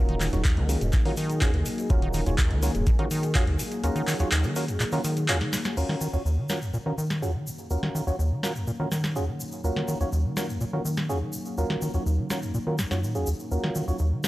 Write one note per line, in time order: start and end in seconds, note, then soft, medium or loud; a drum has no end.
0.00 0.29 D#1 loud
0.00 5.73 F#3 medium
0.00 5.73 A#3 medium
0.00 0.30 C#4 medium
0.00 5.73 D#4 medium
0.00 0.30 F4 medium
0.00 0.30 F#4 medium
0.00 5.76 G#4 medium
0.00 0.30 A#4 loud
0.09 0.15 D#3 loud
0.09 closed hi-hat soft
0.20 0.27 D#3 loud
0.20 clap medium
0.20 open hi-hat loud
0.20 shaker medium
0.33 0.42 D#1 medium
0.33 0.37 D#2 loud
0.33 0.41 C#4 medium
0.33 0.41 F4 medium
0.33 0.41 F#4 medium
0.33 0.41 C#5 medium
0.33 closed hi-hat medium
0.33 shaker soft
0.44 0.59 D#2 loud
0.44 kick loud
0.44 clap loud
0.44 closed hi-hat medium
0.44 shaker medium
0.57 0.76 C#2 medium
0.57 0.83 D#3 medium
0.57 closed hi-hat soft
0.69 0.78 C#4 medium
0.69 0.78 F4 medium
0.69 0.78 F#4 medium
0.69 0.78 A#4 medium
0.69 open hi-hat loud
0.69 shaker medium
0.81 0.91 D#1 loud
0.81 0.91 F2 medium
0.81 closed hi-hat medium
0.81 shaker soft
0.92 0.97 A#2 loud
0.92 kick loud
0.92 clap medium
0.92 closed hi-hat medium
0.92 shaker medium
1.05 1.12 D#3 loud
1.05 1.14 C#4 medium
1.05 1.14 F4 medium
1.05 1.14 F#4 medium
1.05 1.14 A#4 loud
1.05 open hi-hat medium
1.17 1.43 D#3 loud
1.17 open hi-hat loud
1.17 shaker medium
1.30 closed hi-hat soft
1.30 shaker soft
1.41 1.55 D#2 loud
1.41 1.50 C#4 medium
1.41 1.50 F4 medium
1.41 1.50 F#4 medium
1.41 1.50 G#4 loud
1.41 kick loud
1.41 clap loud
1.41 closed hi-hat medium
1.41 shaker medium
1.54 1.63 D#2 loud
1.54 1.67 D#3 medium
1.54 closed hi-hat soft
1.66 1.70 G#2 medium
1.66 open hi-hat loud
1.66 shaker medium
1.78 closed hi-hat medium
1.78 shaker soft
1.90 2.22 D#1 loud
1.90 1.97 D#2 medium
1.90 2.24 C#4 medium
1.90 2.24 F4 medium
1.90 2.24 F#4 medium
1.90 2.24 A#4 loud
1.90 kick loud
1.90 closed hi-hat medium
1.90 shaker soft
2.02 2.09 D#3 loud
2.02 closed hi-hat soft
2.13 2.21 D#3 loud
2.13 open hi-hat loud
2.13 shaker medium
2.26 2.36 D#1 medium
2.26 2.30 D#2 loud
2.26 2.35 C#4 medium
2.26 2.35 F4 medium
2.26 2.35 F#4 medium
2.26 2.35 C#5 medium
2.26 closed hi-hat medium
2.26 shaker soft
2.38 2.52 D#2 loud
2.38 kick loud
2.38 clap loud
2.38 closed hi-hat medium
2.38 shaker medium
2.51 2.70 C#2 medium
2.51 2.76 D#3 medium
2.51 closed hi-hat soft
2.63 2.71 C#4 medium
2.63 2.71 F4 medium
2.63 2.71 F#4 medium
2.63 2.71 A#4 medium
2.63 open hi-hat loud
2.63 shaker medium
2.75 2.84 D#1 loud
2.75 2.85 F2 medium
2.75 closed hi-hat medium
2.75 shaker soft
2.87 2.91 A#2 loud
2.87 kick loud
2.87 closed hi-hat medium
2.87 shaker soft
2.99 3.06 D#3 loud
2.99 3.08 C#4 medium
2.99 3.08 F4 medium
2.99 3.08 F#4 medium
2.99 3.08 A#4 loud
2.99 closed hi-hat soft
3.11 3.37 D#3 loud
3.11 open hi-hat loud
3.11 shaker medium
3.23 closed hi-hat medium
3.23 shaker soft
3.35 3.49 D#2 loud
3.35 3.44 C#4 medium
3.35 3.44 F4 medium
3.35 3.44 F#4 medium
3.35 3.44 G#4 loud
3.35 kick loud
3.35 clap loud
3.35 closed hi-hat medium
3.35 shaker soft
3.47 3.57 D#2 loud
3.47 3.61 D#3 medium
3.47 closed hi-hat soft
3.59 3.63 G#2 medium
3.59 open hi-hat loud
3.59 shaker medium
3.72 closed hi-hat medium
3.72 shaker soft
3.83 3.90 D#2 medium
3.83 4.17 C#4 medium
3.83 4.17 F4 medium
3.83 4.17 F#4 medium
3.83 4.17 A#4 loud
3.83 closed hi-hat medium
3.83 shaker soft
3.96 4.02 D#3 loud
3.96 closed hi-hat soft
3.96 shaker soft
4.07 4.14 D#3 loud
4.07 clap medium
4.07 open hi-hat loud
4.07 shaker medium
4.19 4.24 D#2 loud
4.19 4.29 C#4 medium
4.19 4.29 F4 medium
4.19 4.29 F#4 medium
4.19 4.29 C#5 medium
4.19 closed hi-hat medium
4.19 shaker soft
4.32 4.46 D#2 loud
4.32 clap loud
4.32 closed hi-hat medium
4.32 shaker medium
4.44 4.70 D#3 medium
4.44 closed hi-hat soft
4.44 shaker soft
4.56 4.65 C#4 medium
4.56 4.65 F4 medium
4.56 4.65 F#4 medium
4.56 4.65 A#4 medium
4.56 open hi-hat loud
4.56 shaker medium
4.68 4.78 F2 medium
4.68 closed hi-hat medium
4.68 shaker soft
4.80 4.84 A#2 loud
4.80 clap medium
4.80 closed hi-hat medium
4.80 shaker soft
4.92 4.99 D#3 loud
4.92 5.01 C#4 medium
4.92 5.01 F4 medium
4.92 5.01 F#4 medium
4.92 5.01 A#4 loud
4.92 open hi-hat medium
4.92 shaker soft
5.04 5.30 D#3 loud
5.04 open hi-hat loud
5.04 shaker medium
5.17 closed hi-hat medium
5.17 shaker soft
5.28 5.42 D#2 loud
5.28 5.37 C#4 medium
5.28 5.37 F4 medium
5.28 5.37 F#4 medium
5.28 5.37 G#4 loud
5.28 clap loud
5.28 closed hi-hat medium
5.28 shaker soft
5.41 5.54 D#3 medium
5.41 snare soft
5.41 closed hi-hat soft
5.53 5.57 G#2 medium
5.53 snare medium
5.53 open hi-hat loud
5.53 shaker medium
5.64 snare medium
5.64 closed hi-hat medium
5.64 shaker soft
5.77 5.84 D#2 medium
5.77 14.28 F#3 medium
5.77 14.28 A#3 medium
5.77 6.11 C#4 medium
5.77 14.28 D#4 medium
5.77 6.11 F4 medium
5.77 6.11 F#4 medium
5.77 6.11 A#4 medium
5.77 13.47 C#5 medium
5.77 crash medium
5.77 shaker soft
5.89 5.96 D#3 medium
5.89 snare medium
6.01 6.08 D#3 medium
6.01 shaker medium
6.13 6.17 D#2 loud
6.13 6.22 C#4 medium
6.13 6.22 F4 medium
6.13 6.22 F#4 medium
6.13 6.22 C#5 medium
6.13 shaker soft
6.25 6.39 D#2 loud
6.25 shaker soft
6.38 6.63 D#3 medium
6.49 6.58 C#4 medium
6.49 6.58 F4 medium
6.49 6.58 F#4 medium
6.49 6.58 A#4 medium
6.49 snare medium
6.49 shaker medium
6.62 6.72 F2 medium
6.62 shaker soft
6.74 6.78 A#2 loud
6.74 shaker soft
6.86 6.93 D#3 loud
6.86 6.95 C#4 medium
6.86 6.95 F4 medium
6.86 6.95 F#4 medium
6.86 6.95 A#4 medium
6.98 7.24 D#3 loud
6.98 shaker medium
7.10 snare medium
7.10 shaker soft
7.22 7.36 D#2 loud
7.22 7.31 C#4 medium
7.22 7.31 F4 medium
7.22 7.31 F#4 medium
7.22 7.31 G#4 loud
7.22 shaker soft
7.34 7.48 D#3 medium
7.46 7.50 G#2 medium
7.46 shaker medium
7.58 shaker soft
7.70 7.77 D#2 medium
7.70 8.04 C#4 medium
7.70 8.04 F4 medium
7.70 8.04 F#4 medium
7.70 8.04 A#4 medium
7.70 shaker medium
7.83 7.89 D#3 loud
7.83 snare medium
7.95 8.02 D#3 medium
7.95 shaker medium
8.07 8.11 D#2 medium
8.07 8.16 C#4 medium
8.07 8.16 F4 medium
8.07 8.16 F#4 medium
8.07 8.16 C#5 medium
8.07 shaker soft
8.19 8.33 D#2 loud
8.19 shaker soft
8.31 8.57 D#3 medium
8.43 8.52 C#4 medium
8.43 8.52 F4 medium
8.43 8.52 F#4 medium
8.43 8.52 A#4 medium
8.43 snare medium
8.43 shaker medium
8.55 8.65 F2 medium
8.55 shaker soft
8.67 8.72 A#2 loud
8.67 shaker soft
8.80 8.86 D#3 loud
8.80 8.88 C#4 medium
8.80 8.88 F4 medium
8.80 8.88 F#4 medium
8.80 8.88 A#4 medium
8.92 9.17 D#3 loud
8.92 snare medium
8.92 shaker medium
9.04 snare medium
9.04 shaker soft
9.16 9.30 D#2 loud
9.16 9.25 C#4 medium
9.16 9.25 F4 medium
9.16 9.25 F#4 medium
9.16 9.25 G#4 loud
9.16 shaker medium
9.28 9.41 D#3 medium
9.40 9.44 G#2 medium
9.40 shaker medium
9.52 shaker soft
9.64 9.71 D#2 medium
9.64 9.98 C#4 medium
9.64 9.98 F4 medium
9.64 9.98 F#4 medium
9.64 9.98 A#4 medium
9.64 shaker soft
9.76 9.83 D#3 medium
9.76 snare medium
9.88 9.95 D#3 loud
9.88 shaker medium
10.01 10.05 D#2 loud
10.01 10.09 C#4 medium
10.01 10.09 F4 medium
10.01 10.09 F#4 medium
10.01 10.09 C#5 medium
10.01 shaker soft
10.13 10.26 D#2 loud
10.13 shaker medium
10.25 10.50 D#3 medium
10.37 10.46 C#4 medium
10.37 10.46 F4 medium
10.37 10.46 F#4 medium
10.37 10.46 A#4 medium
10.37 snare medium
10.37 shaker medium
10.49 10.59 F2 medium
10.49 shaker soft
10.61 10.65 A#2 loud
10.61 shaker medium
10.73 10.80 D#3 loud
10.73 10.82 C#4 medium
10.73 10.82 F4 medium
10.73 10.82 F#4 medium
10.73 10.82 A#4 medium
10.85 11.11 D#3 loud
10.85 shaker medium
10.96 snare medium
10.96 shaker soft
11.09 11.23 D#2 medium
11.09 11.18 C#4 medium
11.09 11.18 F4 medium
11.09 11.18 F#4 medium
11.09 11.18 G#4 loud
11.09 shaker soft
11.22 11.35 D#3 medium
11.33 11.38 G#2 medium
11.33 shaker medium
11.45 shaker soft
11.58 11.65 D#2 medium
11.58 11.91 C#4 medium
11.58 11.91 F4 medium
11.58 11.91 F#4 medium
11.58 11.91 A#4 medium
11.58 shaker soft
11.70 11.77 D#3 medium
11.70 snare medium
11.82 11.89 D#3 loud
11.82 shaker medium
11.94 11.98 D#2 medium
11.94 12.03 C#4 medium
11.94 12.03 F4 medium
11.94 12.03 F#4 medium
11.94 12.03 C#5 medium
11.94 shaker soft
12.06 12.20 D#2 loud
12.06 shaker medium
12.18 12.44 D#3 medium
12.30 12.39 C#4 medium
12.30 12.39 F4 medium
12.30 12.39 F#4 medium
12.30 12.39 A#4 medium
12.30 snare medium
12.30 shaker medium
12.42 12.52 F2 medium
12.42 shaker soft
12.54 12.59 A#2 loud
12.54 shaker medium
12.67 12.80 D#3 loud
12.67 12.75 C#4 medium
12.67 12.75 F4 medium
12.67 12.75 F#4 medium
12.67 12.75 A#4 medium
12.78 12.86 D#2 medium
12.78 snare medium
12.78 shaker medium
12.91 13.04 F#2 medium
12.91 13.00 C#4 medium
12.91 13.00 F4 medium
12.91 13.00 F#4 medium
12.91 13.00 C#5 medium
12.91 snare medium
12.91 shaker soft
13.03 13.17 A#2 loud
13.03 shaker soft
13.15 13.25 D#2 medium
13.15 13.29 C#4 medium
13.15 13.29 F4 medium
13.15 13.29 F#4 medium
13.15 13.29 G#4 loud
13.15 shaker soft
13.27 13.34 D#2 medium
13.27 shaker medium
13.39 shaker soft
13.51 13.58 D#2 medium
13.51 13.85 C#4 medium
13.51 13.85 F4 medium
13.51 13.85 F#4 medium
13.51 13.85 A#4 medium
13.51 14.28 D#5 medium
13.51 shaker soft
13.64 13.70 D#3 medium
13.64 snare medium
13.75 13.82 D#3 medium
13.75 shaker medium
13.88 13.92 D#2 loud
13.88 13.96 C#4 medium
13.88 13.96 F4 medium
13.88 13.96 F#4 medium
13.88 13.96 C#5 medium
13.88 shaker soft
13.98 14.14 D#2 loud
13.98 shaker soft
14.12 14.28 D#3 medium
14.24 14.28 C#4 medium
14.24 14.28 F4 medium
14.24 14.28 F#4 medium
14.24 14.28 A#4 medium
14.24 snare medium
14.24 shaker medium